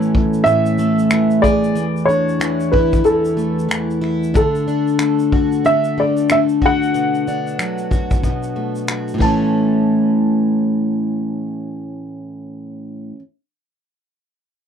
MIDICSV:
0, 0, Header, 1, 4, 480
1, 0, Start_track
1, 0, Key_signature, 3, "major"
1, 0, Tempo, 647249
1, 1307, Time_signature, 4, 2, 24, 8
1, 10886, End_track
2, 0, Start_track
2, 0, Title_t, "Upright piano"
2, 0, Program_c, 0, 0
2, 0, Note_on_c, 0, 69, 83
2, 325, Note_on_c, 0, 76, 103
2, 382, Note_off_c, 0, 69, 0
2, 1053, Note_on_c, 0, 74, 87
2, 1077, Note_off_c, 0, 76, 0
2, 1524, Note_on_c, 0, 73, 79
2, 1554, Note_off_c, 0, 74, 0
2, 2014, Note_on_c, 0, 71, 65
2, 2029, Note_off_c, 0, 73, 0
2, 2261, Note_on_c, 0, 69, 76
2, 2267, Note_off_c, 0, 71, 0
2, 2713, Note_off_c, 0, 69, 0
2, 3237, Note_on_c, 0, 69, 77
2, 4161, Note_off_c, 0, 69, 0
2, 4196, Note_on_c, 0, 76, 99
2, 4437, Note_off_c, 0, 76, 0
2, 4447, Note_on_c, 0, 74, 68
2, 4683, Note_off_c, 0, 74, 0
2, 4684, Note_on_c, 0, 76, 87
2, 4736, Note_off_c, 0, 76, 0
2, 4936, Note_on_c, 0, 78, 86
2, 6570, Note_off_c, 0, 78, 0
2, 6838, Note_on_c, 0, 81, 61
2, 9754, Note_off_c, 0, 81, 0
2, 10886, End_track
3, 0, Start_track
3, 0, Title_t, "Twelve-string acoustic guitar"
3, 0, Program_c, 1, 25
3, 0, Note_on_c, 1, 45, 77
3, 0, Note_on_c, 1, 52, 65
3, 0, Note_on_c, 1, 57, 69
3, 0, Note_on_c, 1, 61, 58
3, 332, Note_off_c, 1, 45, 0
3, 341, Note_on_c, 1, 45, 79
3, 581, Note_off_c, 1, 57, 0
3, 584, Note_on_c, 1, 57, 58
3, 830, Note_off_c, 1, 52, 0
3, 833, Note_on_c, 1, 52, 62
3, 1071, Note_on_c, 1, 68, 67
3, 1300, Note_on_c, 1, 40, 73
3, 1303, Note_off_c, 1, 45, 0
3, 1364, Note_off_c, 1, 61, 0
3, 1366, Note_off_c, 1, 68, 0
3, 1547, Note_on_c, 1, 62, 54
3, 1569, Note_off_c, 1, 52, 0
3, 1779, Note_on_c, 1, 52, 59
3, 2022, Note_on_c, 1, 64, 55
3, 2247, Note_off_c, 1, 40, 0
3, 2256, Note_on_c, 1, 40, 80
3, 2495, Note_off_c, 1, 57, 0
3, 2498, Note_on_c, 1, 57, 53
3, 2725, Note_off_c, 1, 52, 0
3, 2734, Note_on_c, 1, 52, 58
3, 2968, Note_off_c, 1, 64, 0
3, 2977, Note_on_c, 1, 64, 62
3, 3217, Note_off_c, 1, 52, 0
3, 3220, Note_on_c, 1, 50, 80
3, 3278, Note_off_c, 1, 40, 0
3, 3279, Note_off_c, 1, 64, 0
3, 3465, Note_off_c, 1, 62, 0
3, 3468, Note_on_c, 1, 62, 54
3, 3697, Note_off_c, 1, 57, 0
3, 3700, Note_on_c, 1, 57, 60
3, 3953, Note_on_c, 1, 66, 57
3, 4184, Note_off_c, 1, 50, 0
3, 4187, Note_on_c, 1, 50, 74
3, 4429, Note_off_c, 1, 57, 0
3, 4432, Note_on_c, 1, 57, 49
3, 4675, Note_off_c, 1, 57, 0
3, 4678, Note_on_c, 1, 57, 54
3, 4907, Note_off_c, 1, 66, 0
3, 4910, Note_on_c, 1, 66, 53
3, 5149, Note_on_c, 1, 47, 74
3, 5396, Note_off_c, 1, 62, 0
3, 5399, Note_on_c, 1, 62, 55
3, 5625, Note_off_c, 1, 50, 0
3, 5628, Note_on_c, 1, 54, 56
3, 5862, Note_off_c, 1, 66, 0
3, 5865, Note_on_c, 1, 66, 43
3, 6098, Note_off_c, 1, 47, 0
3, 6107, Note_on_c, 1, 47, 69
3, 6129, Note_off_c, 1, 57, 0
3, 6348, Note_on_c, 1, 57, 45
3, 6577, Note_off_c, 1, 54, 0
3, 6586, Note_on_c, 1, 54, 47
3, 6776, Note_off_c, 1, 47, 0
3, 6779, Note_on_c, 1, 45, 69
3, 6806, Note_off_c, 1, 54, 0
3, 6809, Note_on_c, 1, 52, 62
3, 6825, Note_off_c, 1, 66, 0
3, 6831, Note_off_c, 1, 62, 0
3, 6832, Note_off_c, 1, 57, 0
3, 6835, Note_on_c, 1, 57, 74
3, 6858, Note_on_c, 1, 61, 75
3, 9724, Note_off_c, 1, 45, 0
3, 9755, Note_off_c, 1, 52, 0
3, 9781, Note_off_c, 1, 57, 0
3, 9804, Note_off_c, 1, 61, 0
3, 10886, End_track
4, 0, Start_track
4, 0, Title_t, "Drums"
4, 17, Note_on_c, 9, 82, 43
4, 91, Note_off_c, 9, 82, 0
4, 109, Note_on_c, 9, 36, 81
4, 183, Note_off_c, 9, 36, 0
4, 248, Note_on_c, 9, 82, 51
4, 322, Note_off_c, 9, 82, 0
4, 343, Note_on_c, 9, 82, 61
4, 418, Note_off_c, 9, 82, 0
4, 488, Note_on_c, 9, 82, 58
4, 562, Note_off_c, 9, 82, 0
4, 581, Note_on_c, 9, 82, 55
4, 655, Note_off_c, 9, 82, 0
4, 730, Note_on_c, 9, 82, 45
4, 804, Note_off_c, 9, 82, 0
4, 819, Note_on_c, 9, 82, 70
4, 821, Note_on_c, 9, 26, 116
4, 893, Note_off_c, 9, 82, 0
4, 896, Note_off_c, 9, 26, 0
4, 968, Note_on_c, 9, 82, 48
4, 1043, Note_off_c, 9, 82, 0
4, 1066, Note_on_c, 9, 36, 78
4, 1069, Note_on_c, 9, 82, 47
4, 1140, Note_off_c, 9, 36, 0
4, 1143, Note_off_c, 9, 82, 0
4, 1214, Note_on_c, 9, 82, 46
4, 1288, Note_off_c, 9, 82, 0
4, 1307, Note_on_c, 9, 82, 74
4, 1381, Note_off_c, 9, 82, 0
4, 1459, Note_on_c, 9, 82, 39
4, 1533, Note_off_c, 9, 82, 0
4, 1554, Note_on_c, 9, 82, 45
4, 1628, Note_off_c, 9, 82, 0
4, 1693, Note_on_c, 9, 82, 41
4, 1768, Note_off_c, 9, 82, 0
4, 1789, Note_on_c, 9, 26, 103
4, 1791, Note_on_c, 9, 82, 68
4, 1863, Note_off_c, 9, 26, 0
4, 1865, Note_off_c, 9, 82, 0
4, 1930, Note_on_c, 9, 82, 46
4, 2004, Note_off_c, 9, 82, 0
4, 2028, Note_on_c, 9, 36, 75
4, 2102, Note_off_c, 9, 36, 0
4, 2171, Note_on_c, 9, 82, 41
4, 2173, Note_on_c, 9, 36, 77
4, 2245, Note_off_c, 9, 82, 0
4, 2247, Note_off_c, 9, 36, 0
4, 2265, Note_on_c, 9, 82, 56
4, 2339, Note_off_c, 9, 82, 0
4, 2410, Note_on_c, 9, 82, 54
4, 2484, Note_off_c, 9, 82, 0
4, 2510, Note_on_c, 9, 82, 53
4, 2584, Note_off_c, 9, 82, 0
4, 2661, Note_on_c, 9, 82, 44
4, 2735, Note_off_c, 9, 82, 0
4, 2751, Note_on_c, 9, 82, 66
4, 2753, Note_on_c, 9, 26, 104
4, 2825, Note_off_c, 9, 82, 0
4, 2827, Note_off_c, 9, 26, 0
4, 2895, Note_on_c, 9, 82, 40
4, 2969, Note_off_c, 9, 82, 0
4, 2994, Note_on_c, 9, 26, 26
4, 3069, Note_off_c, 9, 26, 0
4, 3140, Note_on_c, 9, 82, 47
4, 3214, Note_off_c, 9, 82, 0
4, 3228, Note_on_c, 9, 36, 101
4, 3229, Note_on_c, 9, 82, 64
4, 3303, Note_off_c, 9, 36, 0
4, 3303, Note_off_c, 9, 82, 0
4, 3376, Note_on_c, 9, 82, 37
4, 3450, Note_off_c, 9, 82, 0
4, 3473, Note_on_c, 9, 82, 46
4, 3547, Note_off_c, 9, 82, 0
4, 3615, Note_on_c, 9, 82, 42
4, 3690, Note_off_c, 9, 82, 0
4, 3701, Note_on_c, 9, 26, 97
4, 3703, Note_on_c, 9, 82, 60
4, 3775, Note_off_c, 9, 26, 0
4, 3777, Note_off_c, 9, 82, 0
4, 3849, Note_on_c, 9, 82, 43
4, 3924, Note_off_c, 9, 82, 0
4, 3948, Note_on_c, 9, 36, 75
4, 4022, Note_off_c, 9, 36, 0
4, 4096, Note_on_c, 9, 82, 46
4, 4170, Note_off_c, 9, 82, 0
4, 4191, Note_on_c, 9, 82, 54
4, 4265, Note_off_c, 9, 82, 0
4, 4332, Note_on_c, 9, 82, 55
4, 4406, Note_off_c, 9, 82, 0
4, 4575, Note_on_c, 9, 82, 42
4, 4649, Note_off_c, 9, 82, 0
4, 4667, Note_on_c, 9, 82, 70
4, 4669, Note_on_c, 9, 26, 105
4, 4741, Note_off_c, 9, 82, 0
4, 4743, Note_off_c, 9, 26, 0
4, 4812, Note_on_c, 9, 82, 45
4, 4886, Note_off_c, 9, 82, 0
4, 4907, Note_on_c, 9, 36, 67
4, 4981, Note_off_c, 9, 36, 0
4, 5062, Note_on_c, 9, 82, 41
4, 5137, Note_off_c, 9, 82, 0
4, 5153, Note_on_c, 9, 82, 63
4, 5227, Note_off_c, 9, 82, 0
4, 5298, Note_on_c, 9, 82, 41
4, 5373, Note_off_c, 9, 82, 0
4, 5396, Note_on_c, 9, 82, 42
4, 5470, Note_off_c, 9, 82, 0
4, 5540, Note_on_c, 9, 82, 41
4, 5614, Note_off_c, 9, 82, 0
4, 5631, Note_on_c, 9, 26, 82
4, 5633, Note_on_c, 9, 82, 57
4, 5706, Note_off_c, 9, 26, 0
4, 5708, Note_off_c, 9, 82, 0
4, 5770, Note_on_c, 9, 82, 47
4, 5844, Note_off_c, 9, 82, 0
4, 5868, Note_on_c, 9, 36, 73
4, 5874, Note_on_c, 9, 82, 42
4, 5942, Note_off_c, 9, 36, 0
4, 5948, Note_off_c, 9, 82, 0
4, 6012, Note_on_c, 9, 82, 44
4, 6014, Note_on_c, 9, 36, 79
4, 6086, Note_off_c, 9, 82, 0
4, 6089, Note_off_c, 9, 36, 0
4, 6107, Note_on_c, 9, 36, 63
4, 6110, Note_on_c, 9, 82, 49
4, 6181, Note_off_c, 9, 36, 0
4, 6184, Note_off_c, 9, 82, 0
4, 6252, Note_on_c, 9, 82, 53
4, 6326, Note_off_c, 9, 82, 0
4, 6493, Note_on_c, 9, 82, 46
4, 6567, Note_off_c, 9, 82, 0
4, 6586, Note_on_c, 9, 82, 62
4, 6588, Note_on_c, 9, 26, 98
4, 6660, Note_off_c, 9, 82, 0
4, 6663, Note_off_c, 9, 26, 0
4, 6734, Note_on_c, 9, 82, 36
4, 6809, Note_off_c, 9, 82, 0
4, 6826, Note_on_c, 9, 36, 76
4, 6830, Note_on_c, 9, 49, 66
4, 6900, Note_off_c, 9, 36, 0
4, 6904, Note_off_c, 9, 49, 0
4, 10886, End_track
0, 0, End_of_file